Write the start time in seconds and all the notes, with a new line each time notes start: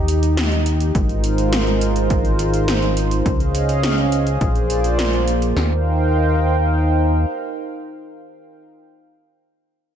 Already playing: D#2 D#4 G4
0.08 closed hi-hat
0.23 closed hi-hat
0.37 snare, closed hi-hat
0.52 closed hi-hat
0.66 closed hi-hat
0.80 closed hi-hat
0.95 G#1 G#3 F4 A#4 C5, kick, closed hi-hat
1.09 closed hi-hat
1.24 closed hi-hat
1.38 closed hi-hat
1.53 snare, closed hi-hat
1.67 closed hi-hat
1.81 closed hi-hat
1.96 closed hi-hat
2.10 kick, closed hi-hat
2.25 closed hi-hat
2.39 closed hi-hat
2.54 closed hi-hat
2.68 snare, closed hi-hat
2.83 closed hi-hat
2.97 closed hi-hat
3.11 closed hi-hat
3.26 C#2 C#4 G#4 D#5 F5, kick, closed hi-hat
3.40 closed hi-hat
3.55 closed hi-hat
3.69 closed hi-hat
3.83 snare, closed hi-hat
3.98 closed hi-hat
4.12 closed hi-hat
4.27 closed hi-hat
4.41 A#1 A#3 F4 C5 D5, kick, closed hi-hat
4.55 closed hi-hat
4.70 closed hi-hat
4.84 closed hi-hat
4.99 snare, closed hi-hat
5.13 closed hi-hat
5.28 closed hi-hat
5.42 closed hi-hat
5.56 D#2 D#4 A#4 C5 F5 G5, snare